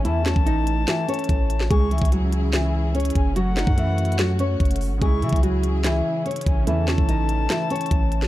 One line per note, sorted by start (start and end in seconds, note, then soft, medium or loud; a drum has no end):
0.00 1.67 C#4 medium
0.05 0.35 E2 loud
0.05 1.69 E3 medium
0.05 0.23 E3 medium
0.05 1.69 A3 medium
0.05 0.22 E4 loud
0.05 1.66 A5 loud
0.05 closed hi-hat medium
0.26 0.43 C#4 medium
0.26 0.43 C#5 medium
0.26 snare medium
0.26 clap medium
0.36 0.86 A1 loud
0.36 kick loud
0.46 0.85 D#4 medium
0.46 0.86 D#5 medium
0.46 closed hi-hat medium
0.67 closed hi-hat medium
0.87 1.05 E3 medium
0.87 1.05 E4 medium
0.87 snare loud
0.87 clap medium
0.87 closed hi-hat medium
1.08 1.67 C#4 medium
1.08 1.67 C#5 medium
1.08 closed hi-hat medium
1.14 closed hi-hat medium
1.19 closed hi-hat medium
1.24 closed hi-hat medium
1.29 1.69 A1 loud
1.29 kick loud
1.29 closed hi-hat medium
1.50 closed hi-hat medium
1.60 snare medium
1.70 2.00 C#2 loud
1.70 3.34 C#3 medium
1.70 1.88 G#3 medium
1.70 4.98 C#4 medium
1.70 3.34 E4 medium
1.70 1.88 G#4 loud
1.70 3.34 G#4 medium
1.70 2.09 C#6 loud
1.70 kick loud
1.70 closed hi-hat medium
1.91 2.09 E3 medium
1.91 2.08 E4 medium
1.91 closed hi-hat soft
1.98 3.11 C#2 loud
1.98 kick loud
1.98 closed hi-hat medium
2.05 closed hi-hat medium
2.12 2.51 F#3 medium
2.12 2.51 F#4 medium
2.12 closed hi-hat medium
2.32 closed hi-hat medium
2.53 2.93 E3 medium
2.53 2.92 E4 medium
2.53 snare loud
2.53 clap medium
2.53 closed hi-hat medium
2.95 3.34 C#4 medium
2.95 3.34 C#5 medium
2.95 closed hi-hat soft
3.00 closed hi-hat medium
3.05 closed hi-hat medium
3.10 closed hi-hat medium
3.15 3.65 F#1 loud
3.15 3.35 G#5 medium
3.15 kick medium
3.15 closed hi-hat medium
3.36 3.54 F#3 medium
3.36 5.00 A3 medium
3.36 3.53 F#4 loud
3.36 5.00 F#4 medium
3.36 4.56 F#5 loud
3.36 closed hi-hat medium
3.57 3.74 D#4 medium
3.57 3.74 D#5 medium
3.57 snare medium
3.57 clap medium
3.67 4.56 F#2 loud
3.67 kick loud
3.77 4.17 E3 medium
3.77 4.16 E4 loud
3.77 closed hi-hat medium
3.98 closed hi-hat medium
4.05 closed hi-hat medium
4.12 closed hi-hat medium
4.19 4.37 F#3 medium
4.19 4.36 F#4 medium
4.19 snare loud
4.19 clap loud
4.19 closed hi-hat medium
4.39 4.98 C#4 medium
4.39 4.98 C#5 medium
4.39 closed hi-hat medium
4.60 4.93 F#1 loud
4.60 kick loud
4.60 closed hi-hat soft
4.65 closed hi-hat medium
4.71 closed hi-hat medium
4.76 closed hi-hat medium
4.81 open hi-hat medium
4.91 5.01 G#1 loud
4.98 5.24 C#2 loud
4.98 6.62 C#3 medium
4.98 6.65 C#3 medium
4.98 6.64 G#3 medium
4.98 8.28 C#4 medium
4.98 6.65 E4 medium
4.98 5.19 G#4 loud
4.98 6.65 G#4 medium
4.98 5.40 C#6 loud
4.98 kick loud
4.98 closed hi-hat medium
5.02 5.19 G#3 medium
5.02 6.66 E4 medium
5.22 5.32 C#3 loud
5.22 5.40 E3 medium
5.22 5.39 E4 medium
5.22 closed hi-hat medium
5.29 6.02 C#2 loud
5.29 kick loud
5.29 closed hi-hat medium
5.36 closed hi-hat medium
5.43 5.82 F#3 medium
5.43 5.82 F#4 medium
5.43 closed hi-hat medium
5.63 closed hi-hat medium
5.84 6.24 E3 medium
5.84 6.23 E4 medium
5.84 snare loud
5.84 clap medium
5.84 closed hi-hat medium
6.26 6.65 C#4 medium
6.26 6.65 C#5 medium
6.26 closed hi-hat soft
6.31 closed hi-hat medium
6.36 closed hi-hat medium
6.41 closed hi-hat medium
6.46 6.69 A1 loud
6.46 6.66 G#5 medium
6.46 kick medium
6.46 closed hi-hat medium
6.63 6.97 E2 loud
6.63 8.27 C#3 medium
6.63 8.28 A3 medium
6.63 6.84 E4 loud
6.63 8.28 A5 loud
6.63 closed hi-hat medium
6.67 8.28 E3 medium
6.67 6.85 E3 medium
6.67 8.28 E3 medium
6.67 8.28 A3 medium
6.88 7.05 C#4 medium
6.88 7.05 C#5 medium
6.88 snare medium
6.88 clap medium
6.98 7.48 A1 loud
6.98 kick loud
7.08 7.47 D#4 medium
7.08 7.48 D#5 medium
7.08 closed hi-hat medium
7.29 closed hi-hat medium
7.50 7.67 E3 medium
7.50 7.67 E4 medium
7.50 snare loud
7.50 clap medium
7.50 closed hi-hat medium
7.70 8.28 C#4 medium
7.70 8.28 C#5 medium
7.70 closed hi-hat medium
7.76 closed hi-hat medium
7.81 closed hi-hat medium
7.86 closed hi-hat medium
7.91 8.28 A1 loud
7.91 kick loud
7.91 closed hi-hat medium
8.12 closed hi-hat medium
8.22 snare medium